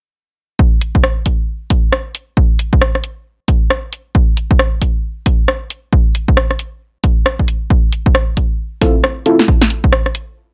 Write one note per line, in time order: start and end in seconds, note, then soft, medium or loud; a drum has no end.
0.59 kick loud
0.81 closed hi-hat loud
0.95 kick medium
1.04 cross-stick loud
1.26 kick medium
1.26 closed hi-hat loud
1.70 kick medium
1.70 closed hi-hat loud
1.93 cross-stick loud
2.15 closed hi-hat loud
2.37 kick loud
2.59 closed hi-hat loud
2.73 kick loud
2.81 cross-stick loud
2.95 cross-stick medium
3.04 closed hi-hat loud
3.48 kick loud
3.48 closed hi-hat loud
3.70 cross-stick loud
3.93 closed hi-hat medium
4.15 kick loud
4.37 closed hi-hat medium
4.51 kick loud
4.59 cross-stick loud
4.82 kick medium
4.82 closed hi-hat medium
5.26 kick loud
5.26 closed hi-hat loud
5.48 cross-stick loud
5.70 closed hi-hat medium
5.93 kick loud
6.15 closed hi-hat medium
6.28 kick loud
6.37 cross-stick loud
6.51 cross-stick medium
6.59 closed hi-hat medium
7.04 kick loud
7.04 closed hi-hat medium
7.26 cross-stick loud
7.39 kick medium
7.48 closed hi-hat medium
7.70 kick loud
7.93 closed hi-hat medium
8.06 kick loud
8.15 cross-stick loud
8.37 kick medium
8.37 closed hi-hat medium
8.81 8.95 C4 medium
8.81 8.95 E4 medium
8.81 8.95 F4 medium
8.81 8.95 A4 medium
8.81 kick loud
8.81 snare soft
8.81 closed hi-hat medium
9.04 cross-stick loud
9.26 9.39 C4 medium
9.26 9.39 E4 medium
9.26 9.39 F4 medium
9.26 9.39 A4 medium
9.26 closed hi-hat medium
9.39 snare soft
9.48 kick loud
9.62 snare medium
9.70 closed hi-hat loud
9.84 kick loud
9.93 cross-stick loud
10.06 cross-stick medium
10.15 closed hi-hat loud